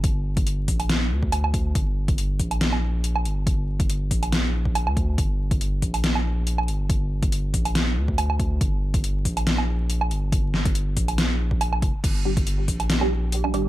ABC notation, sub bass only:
X:1
M:4/4
L:1/16
Q:"Swing 16ths" 1/4=140
K:Gm
V:1 name="Sub bass" clef=bass
G,,,6 B,,,4 D,,2 D,,4 | G,,,6 B,,,8 G,,,2- | G,,,6 B,,,6- B,,, D,,3 | G,,,6 B,,,8 G,,,2- |
G,,,6 B,,,4 D,,2 D,,4 | G,,,6 B,,,8 G,,,2- | G,,,6 B,,,8 F,,, z | G,,,6 B,,,8 G,,,2 |]